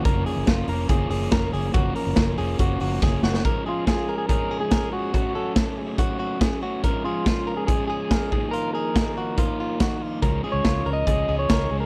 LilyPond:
<<
  \new Staff \with { instrumentName = "Clean electric guitar" } { \time 4/4 \key ges \lydian \tempo 4 = 142 bes'8 aes'8 f'8 bes'8 aes'8 aes'8 bes'8 aes'8 | ges'8 bes'4 aes'8 ges'8 ges'8 aes'8 ges'8 | bes'8 aes'8 f'8 bes'8 aes'8 aes'8 bes'8 aes'8 | ges'8 a'4 aes'8 ges'8 ges'8 aes'8 ges'8 |
bes'8 aes'8 f'8 bes'8 aes'8 aes'8 bes'8 aes'8 | f'8 aes'4 ges'8 f'8 f'8 ges'8 f'8 | bes'8 aes'8 f'8 bes'8 aes'8 aes'8 bes'8 aes'8 | }
  \new Staff \with { instrumentName = "Clean electric guitar" } { \time 4/4 \key ges \lydian r1 | r1 | r8 f'8 aes'8. aes'16 bes'8. aes'8. ges'8~ | ges'4 r2. |
r8 f'4~ f'16 aes'16 aes'8 aes'4. | bes'8 bes'2. r8 | \tuplet 3/2 { r4 des''8~ des''4 ees''8~ } ees''8. des''4 bes'16 | }
  \new Staff \with { instrumentName = "Overdriven electric guitar" } { \clef bass \time 4/4 \key ges \lydian <ges, des f bes des'>4 <ges, des f bes des'>8 <f bes des'>8 <des f bes des'>8 <f bes des'>8 <ges, des f bes des'>4 | <ges, des f bes des'>4 <ges, des f bes des'>8 <f bes des'>8 <des f bes des'>8 <f bes des'>8 <ges, des f bes des'>4 | <des f aes des'>8 <f aes des'>8 <des f aes des'>4 <des f aes des'>4 <des f aes des'>8 <f aes des'>8 | <ges, des ges a des'>8 <ges a des'>8 <des ges a des'>4 <ges, des ges a des'>4 <des ges a des'>8 <ges a des'>8 |
<des f aes des'>8 <f aes des'>8 <des f aes des'>4 <des f aes des'>4 <des f aes des'>8 <ees f bes ees'>8~ | <ees f bes ees'>4 <ees f bes ees'>4 <ees f bes ees'>4 <ees f bes ees'>4 | <des f aes des'>8 <f aes des'>8 <des f aes des'>4 <des f aes des'>4 <des f aes des'>8 <f aes des'>8 | }
  \new Staff \with { instrumentName = "Fingered electric bass" } { \clef bass \time 4/4 \key ges \lydian ges,,8 r16 ges,,16 ges,,8 f,,8 ges,,8 ges,,8 ges,,8 ges,,8 | ges,,8 r16 ges,,16 ges,,8 f,,8 ges,,8 ges,,8 ges,,8 ges,,8 | r1 | r1 |
r1 | r1 | des,8 r16 des,16 des,8 des,8 des,8 des,8 des,8 des,8 | }
  \new DrumStaff \with { instrumentName = "Drums" } \drummode { \time 4/4 <hh bd>8 hho8 <hh bd sn>8 hho8 <hh bd>8 hho8 <hh bd sn>8 hho8 | <hh bd>8 hho8 <hh bd sn>8 hho8 <hh bd>8 hho8 <bd sn>8 sn16 sn16 | <hh bd>4 <hh bd sn>4 <hh bd>4 <hh bd sn>4 | <hh bd>4 <hh bd sn>4 <hh bd>4 <hh bd sn>4 |
<hh bd>4 <hh bd sn>4 <hh bd>4 <hh bd sn>8 bd8 | hh4 <hh bd sn>4 <hh bd>4 <hh bd sn>4 | <hh bd>4 <hh bd sn>4 <hh bd>4 <hh bd sn>4 | }
>>